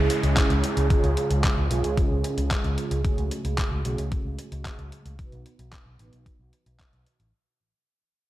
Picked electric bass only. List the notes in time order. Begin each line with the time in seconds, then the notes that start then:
0.23 C#2
0.50 C#2
0.77 C#2
1.04 C#2
1.31 C#2
1.57 C#2
1.71 B1
1.84 C#2
2.11 C#2
2.38 C#2
2.64 C#2
2.91 C#2
3.18 C#2
3.45 C#2
3.72 C#2
3.85 B1
3.98 C#2
4.25 C#2
4.52 C#2
4.79 C#2
5.06 C#2
5.32 B1
5.59 B1
5.86 B1
5.99 A1
6.13 B1
6.39 B1
6.66 B1
6.93 B1
7.20 A1